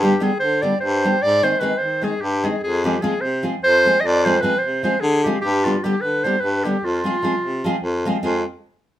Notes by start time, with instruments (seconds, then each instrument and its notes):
Already playing: baritone saxophone G2
0.02 nylon-string guitar D3 G3 B3 D4 G4, clarinet G4
0.20 nylon-string guitar D3 G3 B3 D4 G4, clarinet G#4
0.39 baritone saxophone D3, clarinet C5
0.62 nylon-string guitar D3 G3 B3 D4 G4, clarinet D5
0.81 baritone saxophone G2, clarinet C5
1.04 nylon-string guitar D3 G3 B3 D4 G4
1.22 baritone saxophone G#2, clarinet D5
1.43 nylon-string guitar D#3 G#3 C4 D#4 G#4, clarinet C5
1.60 nylon-string guitar D#3 G#3 C4 D#4 G#4, clarinet B4
1.78 baritone saxophone D#3, clarinet C5
2.02 nylon-string guitar D#3 G#3 C4 D#4 G#4, clarinet G#4
2.21 baritone saxophone G2, clarinet G4
2.43 nylon-string guitar D#3 G#3 C4 D#4 G#4, clarinet G#4
2.63 baritone saxophone F2, clarinet G#4
2.84 nylon-string guitar F3 G#3 C4 F4 G#4, clarinet G4
3.02 nylon-string guitar F3 G#3 C4 F4 G#4, clarinet G#4
3.21 baritone saxophone C3, clarinet C5
3.43 nylon-string guitar F3 G#3 C4 F4 G#4
3.62 baritone saxophone F2, clarinet C5
3.85 nylon-string guitar F3 G#3 C4 F4 G#4
4.00 baritone saxophone F2, clarinet D#5
4.06 clarinet D5
4.24 nylon-string guitar F3 G#3 C4 F4 G#4, clarinet C5
4.41 nylon-string guitar F3 G#3 C4 F4 G#4, clarinet B4
4.59 baritone saxophone C3, clarinet C5
4.83 nylon-string guitar F3 G#3 C4 F4 G#4, clarinet C5
5.00 baritone saxophone D3, clarinet G#4
5.24 nylon-string guitar F3 G#3 C4 F4 G#4, clarinet G4
5.41 baritone saxophone G2, clarinet G4
5.64 nylon-string guitar D3 G3 B3 D4 G4, clarinet F4
5.83 nylon-string guitar D3 G3 B3 D4 G4, clarinet G4
6.01 baritone saxophone D3, clarinet B4
6.24 nylon-string guitar D3 G3 B3 D4 G4, clarinet C5
6.41 baritone saxophone G2, clarinet B4
6.64 nylon-string guitar D3 G3 B3 D4 G4, clarinet G4
6.84 baritone saxophone F2, clarinet F4
7.04 nylon-string guitar F3 G#3 C4 F4 G#4
7.23 nylon-string guitar F3 G#3 C4 F4 G#4
7.41 baritone saxophone C3
7.64 nylon-string guitar F3 G#3 C4 F4 G#4
7.83 baritone saxophone F2
8.05 nylon-string guitar F3 G#3 C4 F4 G#4
8.23 baritone saxophone F2, nylon-string guitar G#3 C4 F4 G#4